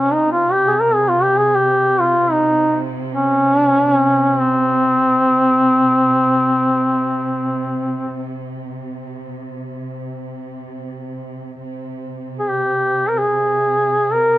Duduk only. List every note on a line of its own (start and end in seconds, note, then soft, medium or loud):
0.00 0.14 C#4 medium
0.13 0.32 D#4 medium
0.32 0.53 F4 medium
0.52 0.69 G4 medium
0.68 0.75 G4 medium
0.68 0.72 G#4 medium
0.73 0.82 G#4 medium
0.80 0.96 A#4 medium
0.95 1.10 G#4 medium
1.09 1.24 F4 medium
1.23 1.39 G4 medium
1.37 1.57 G#4 medium
1.55 2.02 G4 medium
2.00 2.33 F4 medium
2.32 2.80 D#4 medium
3.13 3.56 C#4 medium
3.56 3.68 D4 medium
3.68 3.80 C#4 medium
3.80 3.92 D4 medium
3.92 4.42 C#4 medium
4.40 8.41 C4 medium
12.39 12.50 G#4 soft
12.48 13.10 G4 medium
13.08 13.20 A#4 soft
13.18 14.14 G#4 medium
14.13 14.38 A#4 medium